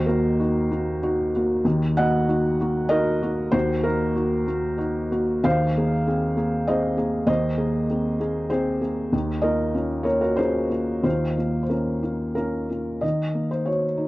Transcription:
0.00 1.60 D#2 medium
0.00 1.61 D#3 medium
0.00 0.07 F#4 medium
0.00 1.66 C5 loud
0.06 0.36 A#3 medium
0.06 0.38 F#4 medium
0.06 1.64 A#4 medium
0.40 0.68 D#4 soft
0.40 0.68 F#4 medium
0.71 0.99 A#3 soft
0.71 0.99 F#4 medium
1.03 1.31 D#4 soft
1.03 1.31 F#4 medium
1.36 1.63 A#3 soft
1.36 1.63 F#4 soft
1.64 3.49 D#2 medium
1.64 3.50 D#3 medium
1.97 2.26 A#3 medium
1.97 2.26 F#4 medium
1.97 2.87 D#5 medium
1.97 2.91 F#5 loud
2.28 2.56 D#4 soft
2.28 2.57 F#4 medium
2.61 2.88 A#3 medium
2.61 2.88 F#4 medium
2.89 3.19 D#4 medium
2.89 3.19 F#4 medium
2.89 3.49 A#4 medium
2.89 3.53 D#5 loud
3.22 3.50 A#3 soft
3.22 3.50 F#4 medium
3.51 5.40 D#2 medium
3.51 5.40 D#3 medium
3.51 3.82 F#4 medium
3.51 3.84 C5 loud
3.83 4.13 A#3 medium
3.83 4.14 F#4 medium
3.83 5.44 A#4 medium
4.15 4.44 D#4 soft
4.15 4.44 F#4 soft
4.47 4.76 A#3 soft
4.47 4.76 F#4 medium
4.78 5.08 D#4 soft
4.78 5.08 F#4 medium
5.11 5.41 A#3 soft
5.11 5.41 F#4 soft
5.44 7.23 D#2 medium
5.44 7.24 D#3 medium
5.44 6.63 C5 medium
5.44 6.67 F5 loud
5.77 6.04 A#3 soft
5.77 6.04 G#4 medium
6.07 6.34 C4 soft
6.07 6.34 G#4 medium
6.36 6.64 A#3 soft
6.36 6.64 G#4 medium
6.67 6.95 C4 medium
6.67 6.95 G#4 medium
6.67 7.24 C5 medium
6.67 7.25 D#5 medium
6.97 7.25 A#3 soft
6.97 7.25 G#4 soft
7.27 9.08 D#2 medium
7.27 9.09 D#3 medium
7.27 8.47 C5 medium
7.27 8.51 D#5 loud
7.57 7.86 A#3 soft
7.57 7.86 G#4 medium
7.90 8.18 C4 soft
7.90 8.18 G#4 soft
8.20 8.48 A#3 soft
8.20 8.48 G#4 soft
8.50 8.79 C4 soft
8.50 8.80 G#4 medium
8.50 9.12 C5 medium
8.82 9.10 A#3 soft
8.82 9.10 G#4 soft
9.12 11.01 D#2 medium
9.12 11.01 D#3 medium
9.42 9.72 A#3 soft
9.42 9.72 F4 soft
9.42 10.02 A#4 medium
9.42 10.06 D#5 medium
9.74 10.03 C#4 soft
9.74 10.03 F4 soft
10.03 10.34 A#3 soft
10.03 10.35 F4 soft
10.03 10.19 A#4 medium
10.03 10.21 C#5 medium
10.21 10.37 F#4 soft
10.21 10.38 A#4 medium
10.36 10.68 C#4 soft
10.36 10.68 F4 soft
10.36 11.00 G#4 medium
10.36 11.02 C5 medium
10.70 11.00 A#3 soft
10.70 11.01 F4 soft
11.03 12.97 D#2 soft
11.03 12.98 D#3 medium
11.03 11.36 F4 medium
11.03 11.61 C5 medium
11.37 11.67 A#3 soft
11.37 11.67 F4 soft
11.63 11.70 C5 soft
11.69 12.00 C#4 soft
11.69 12.02 F4 soft
11.69 12.33 A#4 soft
12.03 12.33 A#3 soft
12.03 12.33 F4 soft
12.35 12.66 C#4 soft
12.35 12.67 F4 soft
12.35 13.02 A#4 medium
12.69 12.99 A#3 soft
12.69 12.99 F4 soft
13.01 14.08 D#3 soft
13.01 13.49 D#5 medium
13.34 13.85 A#3 soft
13.51 13.66 C5 medium
13.65 14.08 F#4 soft
13.65 14.08 C#5 medium
13.97 14.08 D#4 soft

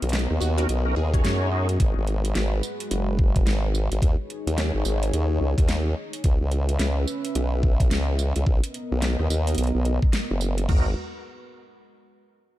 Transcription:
0.00 0.27 B1 loud
0.00 1.77 B3 medium
0.00 1.78 A#4 medium
0.00 1.77 D#5 medium
0.00 closed hi-hat soft
0.09 snare loud
0.09 closed hi-hat soft
0.13 closed hi-hat medium
0.19 closed hi-hat soft
0.30 0.39 D#2 loud
0.30 cross-stick soft
0.40 0.67 D#2 loud
0.40 0.52 F#4 medium
0.40 tambourine medium
0.58 0.68 C#4 medium
0.58 0.68 D#4 medium
0.58 0.65 F#4 medium
0.58 0.68 F#4 medium
0.58 0.68 A#4 medium
0.58 closed hi-hat medium
0.69 0.95 B1 medium
0.69 closed hi-hat medium
0.86 0.95 C#4 medium
0.86 0.95 D#4 medium
0.86 0.95 F#4 medium
0.86 0.95 A#4 medium
0.96 1.23 D#2 loud
0.96 1.75 G#4 loud
1.14 1.49 C#4 medium
1.14 1.50 D#4 medium
1.14 1.49 F#4 medium
1.14 1.49 C#5 medium
1.14 kick loud
1.14 closed hi-hat medium
1.24 1.78 F#2 medium
1.24 snare loud
1.24 closed hi-hat medium
1.52 1.68 C#4 medium
1.52 1.68 D#4 medium
1.52 1.68 F#4 medium
1.52 1.68 G#4 medium
1.69 closed hi-hat soft
1.79 1.94 G#1 loud
1.79 4.00 G#3 medium
1.79 4.00 F#4 medium
1.79 3.99 B4 medium
1.79 kick loud
1.79 closed hi-hat medium
1.97 2.34 G#1 loud
2.07 closed hi-hat soft
2.25 closed hi-hat soft
2.35 2.61 G#1 medium
2.35 snare loud
2.35 closed hi-hat medium
2.63 tambourine medium
2.80 closed hi-hat soft
2.91 3.45 F#1 loud
2.91 closed hi-hat medium
3.19 kick loud
3.36 kick loud
3.36 closed hi-hat medium
3.47 3.89 G#1 loud
3.47 snare loud
3.47 closed hi-hat medium
3.75 tambourine medium
3.91 4.00 G#1 loud
3.91 closed hi-hat soft
4.01 4.16 D#2 medium
4.01 6.22 D#4 medium
4.01 6.22 G#4 medium
4.01 6.22 C#5 medium
4.01 kick loud
4.01 closed hi-hat medium
4.30 closed hi-hat soft
4.47 4.72 D#2 loud
4.47 closed hi-hat soft
4.58 snare loud
4.58 closed hi-hat medium
4.75 4.84 G#1 loud
4.75 cross-stick soft
4.77 cross-stick soft
4.80 cross-stick soft
4.82 cross-stick soft
4.85 5.11 G#1 loud
4.85 cross-stick soft
4.85 tambourine medium
4.90 cross-stick soft
4.94 cross-stick soft
4.98 cross-stick soft
5.03 closed hi-hat soft
5.13 5.39 D#2 loud
5.13 closed hi-hat medium
5.41 5.55 C#2 medium
5.58 5.95 D#2 loud
5.58 kick loud
5.58 closed hi-hat medium
5.69 snare loud
5.69 closed hi-hat medium
6.13 closed hi-hat soft
6.24 6.39 C#2 loud
6.24 8.45 C#4 medium
6.24 8.45 B4 medium
6.24 8.45 E5 medium
6.24 kick loud
6.24 closed hi-hat medium
6.41 6.78 C#2 loud
6.52 closed hi-hat soft
6.69 closed hi-hat soft
6.79 7.06 C#2 medium
6.79 snare loud
6.79 closed hi-hat medium
7.08 tambourine medium
7.25 closed hi-hat medium
7.35 7.89 B1 medium
7.35 closed hi-hat medium
7.63 kick loud
7.80 kick loud
7.80 closed hi-hat medium
7.91 8.33 C#2 medium
7.91 snare loud
7.91 closed hi-hat medium
8.19 tambourine medium
8.36 8.45 C#2 loud
8.36 closed hi-hat soft
8.46 8.61 B1 loud
8.46 10.66 B3 medium
8.46 10.66 A#4 medium
8.46 10.67 D#5 medium
8.46 kick loud
8.64 closed hi-hat medium
8.74 closed hi-hat soft
8.92 9.16 B1 loud
9.02 snare loud
9.02 closed hi-hat medium
9.19 9.28 D#2 loud
9.19 cross-stick soft
9.30 9.56 D#2 loud
9.30 tambourine medium
9.47 closed hi-hat soft
9.55 9.72 B1 medium
9.55 closed hi-hat soft
9.58 closed hi-hat medium
9.64 closed hi-hat soft
9.67 closed hi-hat soft
9.75 10.00 B1 loud
9.85 closed hi-hat soft
10.02 kick loud
10.13 snare loud
10.13 closed hi-hat medium
10.31 10.67 F#1 medium
10.41 tambourine medium
10.58 closed hi-hat medium
10.68 10.95 G#1 loud
10.68 10.94 G#3 medium
10.68 10.91 B3 medium
10.68 10.91 D#4 medium
10.68 10.95 F#4 medium
10.68 10.91 F#4 medium
10.68 10.91 A#4 medium
10.68 10.95 B4 medium
10.68 kick loud
10.68 floor tom loud
10.68 crash medium

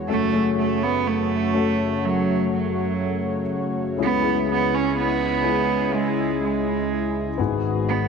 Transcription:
0.00 3.94 F#4 medium
0.00 3.93 C#5 medium
0.08 3.94 F#1 soft
0.08 3.93 F#2 medium
0.08 3.94 F#2 soft
0.08 7.34 C#3 medium
0.08 3.94 A3 medium
0.08 0.30 A3 medium
0.08 0.54 A3 medium
0.08 0.31 C#4 soft
0.08 0.32 F#4 medium
0.08 0.32 A4 medium
0.32 1.48 A3 medium
0.32 1.48 C#4 soft
0.32 1.48 F#4 soft
0.32 1.48 G#4 medium
0.59 0.85 A3 medium
0.83 1.09 B3 medium
1.07 2.06 A3 medium
1.53 3.39 A3 medium
1.53 3.39 C#4 soft
1.53 3.40 F#4 soft
1.53 3.40 A4 medium
2.05 2.53 F#3 medium
2.55 3.47 F#3 medium
3.97 7.35 C#2 medium
3.97 7.35 C#2 soft
3.97 7.35 C#3 soft
3.97 4.20 G#3 medium
3.97 7.35 G#3 medium
3.97 4.20 C#4 medium
3.97 7.35 E4 medium
3.97 4.21 E4 medium
3.97 7.35 G#4 medium
3.97 4.21 G#4 medium
4.03 4.46 B3 medium
4.21 5.37 G#3 medium
4.21 5.37 C#4 medium
4.21 5.38 E4 medium
4.21 5.38 G#4 medium
4.51 4.76 B3 medium
4.75 4.97 C#4 medium
4.98 5.97 B3 medium
5.42 7.28 G#3 medium
5.42 7.29 C#4 soft
5.42 7.29 E4 soft
5.42 7.29 G#4 medium
5.95 6.42 G#3 medium
6.44 7.36 G#3 medium
7.38 8.08 G#1 medium
7.38 8.08 G#2 soft
7.38 8.08 G#2 medium
7.38 8.08 D#3 medium
7.38 8.08 B3 medium
7.38 8.08 D#4 medium
7.38 8.08 F#4 medium
7.38 8.08 G#4 medium
7.89 8.08 B3 medium

